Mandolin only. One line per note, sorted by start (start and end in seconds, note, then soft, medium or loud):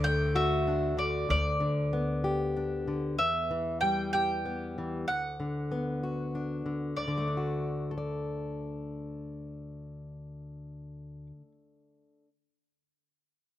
0.04 0.36 G5 medium
0.36 0.98 E5 medium
0.99 1.28 D5 medium
1.30 2.83 D5 medium
3.18 3.78 E5 medium
3.81 4.11 G5 medium
4.13 5.07 G5 medium
5.08 6.30 F#5 medium
6.96 11.26 D5 medium